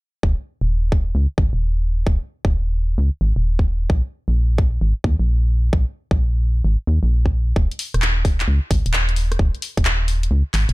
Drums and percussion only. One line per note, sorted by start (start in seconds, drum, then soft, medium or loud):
0.23 kick loud
0.92 kick medium
1.38 kick loud
2.07 kick loud
2.45 kick loud
3.59 kick medium
3.90 kick loud
4.58 kick loud
5.04 kick loud
5.73 kick loud
6.11 kick loud
7.26 kick medium
7.56 kick loud
7.71 closed hi-hat soft
7.79 open hi-hat loud
7.94 cross-stick soft
7.94 closed hi-hat medium
8.02 clap loud
8.25 kick loud
8.25 open hi-hat medium
8.40 clap medium
8.40 closed hi-hat medium
8.71 kick loud
8.71 open hi-hat loud
8.86 closed hi-hat medium
8.94 clap loud
9.09 closed hi-hat soft
9.16 open hi-hat medium
9.32 cross-stick medium
9.32 closed hi-hat medium
9.39 kick loud
9.55 closed hi-hat soft
9.62 open hi-hat loud
9.77 kick loud
9.77 closed hi-hat medium
9.85 clap loud
10.08 open hi-hat medium
10.23 closed hi-hat medium
10.54 clap medium
10.54 open hi-hat loud
10.69 closed hi-hat medium